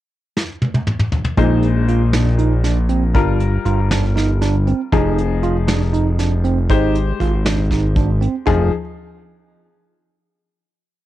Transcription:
0.37 snare
0.62 high tom
0.74 high tom
0.87 mid tom
1.00 mid tom
1.12 floor tom
1.25 floor tom
1.38 A#1 A#2 G#3 D#4 C5, kick, closed hi-hat
1.63 closed hi-hat
1.88 F4, closed hi-hat
2.13 D4, snare, closed hi-hat
2.39 D#4, closed hi-hat
2.64 D4, snare, closed hi-hat
2.89 C4, closed hi-hat
3.14 G1 G3 D4 F4 A#4, kick, closed hi-hat
3.40 closed hi-hat
3.65 G1 F4, closed hi-hat
3.91 D4, snare, closed hi-hat
4.16 D#4, snare, closed hi-hat
4.41 D4, snare, closed hi-hat
4.67 C4, closed hi-hat
4.92 F1 F3 D#4 G#4, kick, closed hi-hat
5.18 closed hi-hat
5.43 F4, closed hi-hat
5.68 D4, snare, closed hi-hat
5.93 D#4, closed hi-hat
6.19 D4, snare, closed hi-hat
6.44 C4, closed hi-hat
6.69 G#1 G#3 D#4 G4 C5, kick, closed hi-hat
6.95 closed hi-hat
7.20 G#1 F4, kick, closed hi-hat
7.46 D4, snare, closed hi-hat
7.71 D#4, kick, snare, closed hi-hat
7.96 D4, kick, closed hi-hat
8.21 C4, closed hi-hat
8.46 F1 F3 D#4 F4 G#4, kick, floor tom

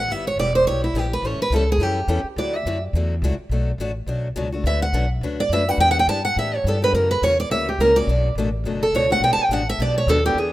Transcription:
Already playing: F#5
0.08 G1 G3 B3 E4 G4 E5
0.27 C#5
0.37 E1 G3 B3 E4 G4 D5
0.55 C5
0.65 B1 G3 B3 E4 G4 C#5
0.84 E4
0.94 A#1 G3 B3 E4 G4
1.13 B4
1.22 A1 E3 G3 C#4 E4 A4
1.27 C#5
1.38 B4, muted upright bass stroke
1.50 C#2 E3 G3 C#4 E4 A4
1.56 A4
1.72 G#4
1.78 F#2 E3 G3 C#4 E4 A4
1.83 G4
2.08 E2 E3 G3 C#4 E4 A4
2.24 muted upright bass stroke
2.36 D2 D3 F#3 A3 E4 F#4 D5
2.56 E5
2.66 F#2 D3 F#3 A3 E4 F#4
2.93 E2 D3 F#3 A3 E4 F#4
3.22 C#2 D3 F#3 A3 E4 F#4
3.38 muted upright bass stroke
3.49 B1 B2 F#3 A3 D4 F#4
3.78 A1 B2 F#3 A3 D4 F#4
4.06 B1 B2 F#3 A3 D4 F#4
4.36 C#2 B2 F#3 A3 D4 F#4
4.52 A3 D4 F#4
4.64 D2 D3 F#3 A3 D4 F#4 B4 E5
4.82 F#5
4.93 B1 D3 F#3 A3 D4 F#4 B4
5.21 D2 D3 F#3 A3 D4 F#4 B4
5.40 D5
5.49 F#2 D3 F#3 A3 D4 F#4 B4 E5
5.68 A3 D4 F#4 B4 F#5
5.78 E2 E3 B3 D4 G4 G5
5.91 F#5
5.99 G5
6.07 G2 E3 B3 D4 G4 A5
6.25 F#5
6.36 A2 E3 B3 D4 G4 E5
6.55 C#5
6.64 G2 E3 B3 D4 G4
6.68 A4
6.82 B3 D4 G4 B4
6.93 F#2 C#3 E3 A#3 C#4 F#4 A#4
7.11 B4
7.22 E2 C#3 E3 A#3 C#4 F#4 C#5
7.40 D5
7.50 D2 C#3 E3 A#3 C#4 F#4 E5
7.69 G4
7.78 C#2 C#3 E3 A#3 C#4 F#4 A#4
7.96 A#3 C#4 F#4 D5
8.07 B1 B2 F#3 A3 D4 F#4
8.35 A1 B2 F#3 A3 D4 F#4
8.64 F#1 B2 F#3 A3 D4 F#4
8.83 A4
8.92 C#2 B2 F#3 A3 D4 F#4 C#5
9.10 A3 D4 F#4 F#5
9.20 B1 B2 G3 B3 D4 F#4 G5
9.33 A5
9.37 muted upright bass stroke
9.44 G5
9.49 A1 B2 G3 B3 D4 F#4
9.53 F#5
9.69 E5
9.79 B1 B2 G3 B3 D4 F#4 D5
9.98 C#5
10.07 D#2 B2 G3 B3 D4 F#4 A4
10.25 B3 D4 F#4 G4
10.35 E2 E3 B3 D4
10.39 G#4

